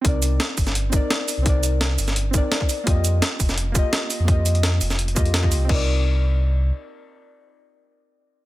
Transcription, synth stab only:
\new Staff \with { instrumentName = "Synth stab" } { \time 4/4 \key c \minor \tempo 4 = 170 <c' ees' bes' d''>2~ <c' ees' bes' d''>8 <c' ees' bes' d''>4. | <c' ees' bes' d''>2~ <c' ees' bes' d''>8 <c' ees' bes' d''>4. | <bes f' g' ees''>2~ <bes f' g' ees''>8 <bes f' g' ees''>4. | <bes f' g' ees''>2~ <bes f' g' ees''>8 <bes f' g' ees''>16 r8 <bes f' g' ees''>8. |
<c' ees' bes' d''>1~ | <c' ees' bes' d''>1 | }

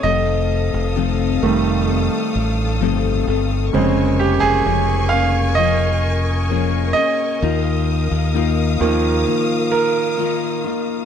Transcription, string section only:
\new Staff \with { instrumentName = "String section" } { \time 4/4 \key ees \mixolydian \tempo 4 = 65 << { <f'' ees'''>1 | <aes'' des'''>1 | <f'' ees'''>1 | } \\ { a'1 | bes'1~ | bes'1 | } >> }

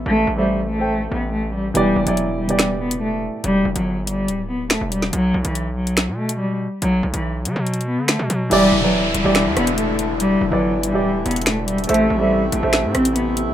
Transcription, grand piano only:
\new Staff \with { instrumentName = "Grand piano" } { \time 4/4 \key e \minor \tempo 4 = 142 r8. <a a' c'' e''>4 <a a' c'' g''>4.~ <a a' c'' g''>16 r8 | <e b g' d''>8. <e b e' d''>4 <e b g' d''>4.~ <e b g' d''>16 r8 | r1 | r1 |
r1 | <e e' g' d''>8. <e e' b' d''>4 <e e' g' d''>4.~ <e e' g' d''>16 r8 | r8. <e e' b' d''>4 <e e' g' d''>4.~ <e e' g' d''>16 r8 | <a a' c'' e''>8. <a a' c'' e''>4 <a a' c'' e''>4.~ <a a' c'' e''>16 r8 | }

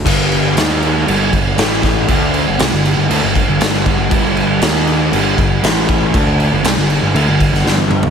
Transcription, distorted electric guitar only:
\new Staff \with { instrumentName = "Distorted electric guitar" } { \clef bass \time 4/4 \key g \minor \tempo 4 = 119 <g, d g>4 <ees bes ees'>4 <g, d g>8 <g, d>8 <a, e a>4 | <d a d'>8. <g, d>16 <c g>16 <g, d>8 <g, d>16 <d a>16 <g, d>8 <g, d>16 <g, d g>8. <g, d>16 | <g, d g>4 <ees bes ees'>4 <g, d g>8 <g, d>8 <a, e a>4 | <d a d'>8. <g, d>16 <c g>16 <g, d>8 <g, d>16 <d a>16 <g, d>8 <g, d>16 <g, d g>8. <g, d>16 | }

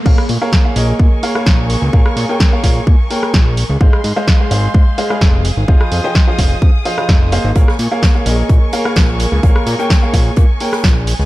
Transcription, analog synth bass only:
\new Staff \with { instrumentName = "Analog synth bass" } { \clef bass \time 4/4 \key bes \minor \tempo 4 = 128 bes,,16 r16 bes,16 r8. bes,,16 r16 bes,16 r8. bes,,8. des,16 | bes,,16 r16 bes,16 r8. bes,,16 r16 bes,16 r8. bes,,8. des,16 | aes,,16 r16 aes,16 r8. aes,,16 r16 aes,16 r8. f,,8. aes,,16 | f,,16 r16 f,16 r8. f,,16 r16 f,16 r8. f,,8. aes,,16 |
bes,,16 r16 bes,16 r8. bes,,16 r16 bes,16 r8. bes,,8. des,16 | bes,,16 r16 bes,16 r8. bes,,16 r16 bes,16 r8. bes,,8. des,16 | }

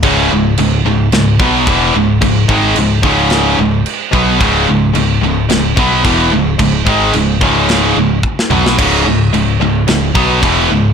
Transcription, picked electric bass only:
\new Staff \with { instrumentName = "Picked electric bass" } { \clef bass \time 4/4 \key cis \minor \tempo 4 = 110 cis,,8 cis,,8 cis,,8 cis,,8 cis,,8 b,,8 e,,8 cis,,8 | cis,,8 gis,,8 cis,,8 cis,,4 cis,,8 r8 b,,8 | cis,,8 cis,,8 cis,,8 cis,,8 cis,,8 b,,8 e,,8 cis,,8 | cis,,8 gis,,8 cis,,8 cis,,4 cis,,8 r8 b,,8 |
cis,,8 cis,,8 cis,,8 cis,,8 cis,,8 b,,8 e,,8 cis,,8 | }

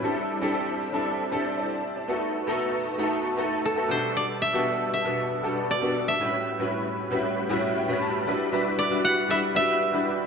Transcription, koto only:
\new Staff \with { instrumentName = "Koto" } { \time 4/4 \key e \minor \tempo 4 = 116 r1 | r2. a'8 c''8 | d''8 e''4 e''4 r8 d''8. e''16~ | e''2. r4 |
r4 d''8 fis''8 e''8 e''4. | }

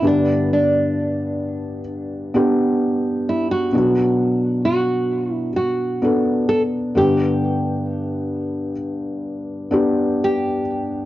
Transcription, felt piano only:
<<
  \new Staff \with { instrumentName = "Felt piano" } { \time 4/4 \key g \lydian \tempo 4 = 65 <b d' g'>2 r8 <b d' g'>4. | <b d' fis'>2 r8 <b d' a'>4 <b d' g'>8~ | <b d' g'>4. r4 <b d' g'>4. | }
  \new Staff \with { instrumentName = "Felt piano" } { \clef bass \time 4/4 \key g \lydian <g, d>1 | <b, fis>2.~ <b, fis>8 <g, d>8~ | <g, d>2.~ <g, d>8 r8 | }
>>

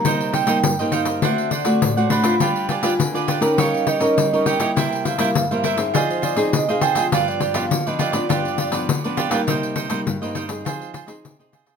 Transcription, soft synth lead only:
\new Staff \with { instrumentName = "Soft synth lead" } { \time 4/4 \key c \minor \tempo 4 = 102 bes''8 g''4 f''8 e''8 d''4 b''8~ | b''8 aes''4 g''8 f''8 ees''4 g''8~ | g''8 f''4 e''8 d''16 c''16 d''8 ees''16 f''16 g''8 | f''16 d''8 f''8 ees''8 d''4. r8. |
r1 | }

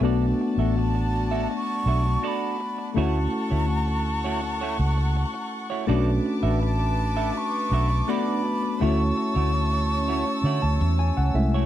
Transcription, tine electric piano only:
\new Staff \with { instrumentName = "Tine electric piano" } { \time 4/4 \key b \minor \tempo 4 = 82 << { r1 | r1 | r1 | r2 r8 a''8 gis''16 fis''16 e''8 | } \\ { <a b d' fis'>1 | <a cis' e' fis'>1 | <a cis' d' fis'>2. <a b d' fis'>4 | <a cis' e' fis'>2.~ <a cis' e' fis'>8 <gis a cis' e'>8 | } >> }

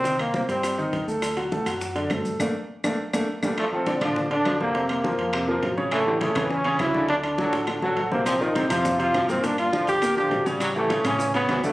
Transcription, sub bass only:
\new Staff \with { instrumentName = "Sub bass" } { \clef bass \time 4/4 \key d \phrygian \tempo 4 = 205 c,4. g,4. d,4~ | d,4. fis,4. g,4 | g,,8 r4 g,,8 r8 g,,8 r8 g,,8 | r4. a,,4. f,,4~ |
f,,4. f,4. a,,4~ | a,,4. e,4. d,4~ | d,4. a,,4 a,,8 bes,,4~ | bes,,4. f,4. g,4~ |
g,4. d,4 bes,,8 a,,4~ | a,,4. a,4. d,4 | }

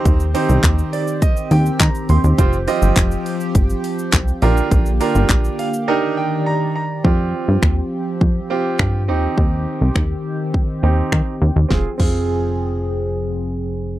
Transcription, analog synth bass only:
\new Staff \with { instrumentName = "Analog synth bass" } { \clef bass \time 4/4 \key f \dorian \tempo 4 = 103 ees,8. c,16 ees,8 r4 ees,8 ees16 r16 ees,16 ees,16 | f,,8. g,,16 f,,8 r8 g,,8 r8 c,8 bes,,8 | bes,,8. g,,16 bes,,8 r2 r8 | f,8. g,16 ees,8 r8 f,8 r8 g,8 ees,8 |
ees,8. c,16 ees,8 r4 ees,8 ees16 r16 ees,16 ees,16 | f,,16 r16 f,,2.~ f,,8 | }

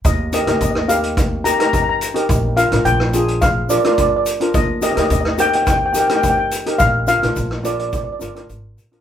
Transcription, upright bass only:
\new Staff \with { instrumentName = "Upright bass" } { \clef bass \time 4/4 \key ees \major \tempo 4 = 106 ees,8. ees,16 ees,2 r4 | bes,,8. bes,,16 bes,,2 r4 | ees,8. ees,16 ees,2 r4 | bes,,8. bes,,16 bes,,4. g,,8 aes,,8 bes,,8 | }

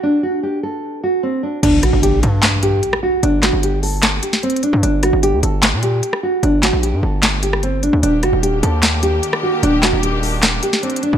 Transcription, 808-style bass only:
\new Staff \with { instrumentName = "808-style bass" } { \clef bass \time 4/4 \key ees \lydian \tempo 4 = 150 r1 | g,,8 a,,16 g,,8. g,4. r4 | g,,8. g,,4.~ g,,16 r4 r16 g,16 | g,,8. g,,8 d,16 g,,8. bes,8. r4 |
g,,8. bes,,8 g,16 g,,2~ g,,16 d,16 | ees,,8 fis,,16 ees,,8. ees,4. r4 | ees,,8. ees,,4.~ ees,,16 r4 r16 ees,16 | }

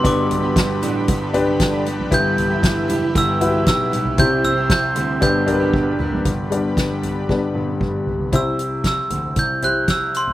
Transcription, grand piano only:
\new Staff \with { instrumentName = "Grand piano" } { \clef bass \time 4/4 \key g \major \tempo 4 = 116 g,,4. a,,8 g,,2 | g,,4. fis,,8 g,,4 b,,8 b,,8 | c,4. d,8 g,,2 | g,,4 g,,4. g,,4. |
c,4~ c,16 r16 d,8 c,2 | }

